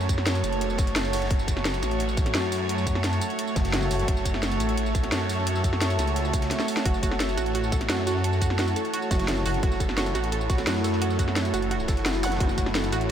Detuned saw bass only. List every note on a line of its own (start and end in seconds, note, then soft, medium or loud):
0.00 0.43 F#2 loud
0.44 0.77 F#1 loud
0.79 1.29 F#1 loud
1.31 1.81 F#1 loud
1.83 2.33 A1 loud
2.35 3.20 F#2 loud
4.08 4.59 F#1 loud
4.60 5.11 A1 loud
5.12 5.97 F#2 loud
5.99 6.51 C#2 loud
6.86 7.36 F#1 loud
7.38 7.88 A1 medium
7.90 8.75 F#2 loud
9.63 10.14 F#1 loud
10.15 10.66 A1 loud
10.67 11.52 F#2 loud
11.54 11.87 F#1 loud
11.88 12.39 F#1 loud
12.40 12.91 F#1 loud
12.92 13.11 A1 loud